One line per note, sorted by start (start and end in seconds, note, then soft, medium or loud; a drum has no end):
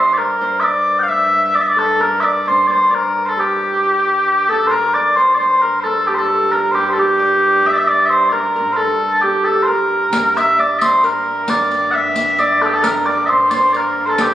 0.00 4.70 G2 medium
0.00 0.84 G4 medium
0.00 0.17 A#4 medium
0.00 0.13 C5 medium
0.00 0.41 C5 medium
0.00 0.61 D5 medium
0.00 1.07 E5 medium
0.13 1.82 A#4 medium
0.13 0.18 D5 medium
0.18 0.60 A#4 medium
0.41 2.39 C5 medium
0.60 1.53 D5 medium
0.60 0.64 E5 medium
0.64 0.99 D5 medium
0.99 1.08 F5 medium
0.99 1.03 G5 medium
1.08 2.80 E5 medium
1.08 1.55 E5 medium
1.53 2.22 D5 medium
1.53 1.61 D5 medium
1.61 1.67 E5 medium
1.67 1.79 D5 medium
1.76 2.05 A4 medium
1.76 2.01 A4 medium
1.99 2.90 A#4 medium
1.99 2.20 A#4 medium
2.20 4.07 D5 medium
2.20 2.24 E5 medium
2.24 2.48 D5 medium
2.46 2.68 C5 medium
2.46 2.67 C5 medium
2.67 4.66 C5 medium
2.67 2.71 D5 medium
2.71 2.91 C5 medium
2.91 4.54 A#4 medium
2.91 3.25 A#4 medium
2.91 2.95 D5 medium
3.25 3.40 A4 medium
3.25 3.29 C5 medium
3.36 5.71 G4 medium
3.36 4.49 G4 medium
4.48 4.77 A4 medium
4.48 4.67 A4 medium
4.67 10.14 G2 medium
4.67 4.94 A#4 medium
4.67 5.62 A#4 medium
4.67 4.71 C5 medium
4.94 5.16 D5 medium
4.94 6.80 D5 medium
5.16 5.34 C5 medium
5.16 5.39 C5 medium
5.34 5.61 C5 medium
5.34 5.38 D5 medium
5.40 7.38 C5 medium
5.61 5.80 A#4 medium
5.61 5.91 A#4 medium
5.80 6.07 A4 medium
5.80 5.84 C5 medium
5.85 6.18 A4 medium
6.07 6.14 G4 medium
6.07 6.74 G4 medium
6.14 6.59 A4 medium
6.14 6.52 A4 medium
6.14 6.18 C5 medium
6.52 6.71 A#4 medium
6.52 8.32 A#4 medium
6.71 6.97 G4 medium
6.71 6.90 G4 medium
6.71 6.75 C5 medium
6.90 6.99 A4 soft
6.90 6.93 C5 soft
6.98 9.22 G4 medium
6.98 7.67 G4 medium
7.19 7.87 D5 medium
7.66 7.75 E5 medium
7.66 7.73 E5 medium
7.73 7.77 D5 medium
7.73 9.48 E5 medium
7.77 7.87 E5 medium
7.87 8.05 D5 medium
7.87 9.72 D5 medium
8.05 8.10 E5 medium
8.10 8.29 C5 medium
8.29 8.55 A#4 medium
8.29 8.72 A#4 medium
8.29 8.32 D5 medium
8.56 8.83 A#4 medium
8.72 8.76 C5 medium
8.76 9.21 A4 medium
8.76 9.46 A4 medium
9.21 9.44 G4 medium
9.21 11.58 G4 medium
9.44 9.63 A4 medium
9.44 9.73 A4 medium
9.63 9.67 C5 medium
9.67 10.37 A#4 medium
9.67 11.03 A#4 medium
10.13 14.34 G2 medium
10.13 riq medium
10.36 11.92 E5 medium
10.36 10.60 E5 medium
10.36 riq soft
10.59 11.47 D5 medium
10.59 10.79 D5 medium
10.79 11.05 C5 medium
10.79 10.82 E5 medium
10.79 riq medium
11.04 12.67 A#4 medium
11.04 11.50 A#4 medium
11.04 riq soft
11.48 12.38 D5 medium
11.48 11.91 D5 medium
11.48 riq medium
11.71 riq soft
11.91 12.15 E5 medium
11.91 12.39 E5 medium
11.91 11.94 F#5 medium
12.15 13.88 E5 medium
12.15 riq soft
12.39 13.05 D5 medium
12.39 12.62 D5 medium
12.39 riq soft
12.61 12.72 A4 medium
12.61 12.66 A4 medium
12.66 12.74 G4 medium
12.72 12.88 A4 medium
12.72 12.84 A4 medium
12.82 13.72 A#4 medium
12.82 13.06 A#4 medium
12.82 riq medium
13.06 14.34 D5 medium
13.06 13.26 D5 medium
13.26 13.49 C5 medium
13.26 13.50 C5 medium
13.26 13.30 E5 medium
13.50 14.34 C5 medium
13.50 13.54 D5 medium
13.50 riq soft
13.54 13.73 C5 medium
13.73 14.12 A#4 medium
13.73 14.06 A#4 medium
13.73 13.77 D5 medium
13.73 riq soft
14.06 14.34 A4 medium
14.06 14.21 A4 medium
14.06 14.10 C5 medium
14.18 14.34 G4 medium
14.18 riq medium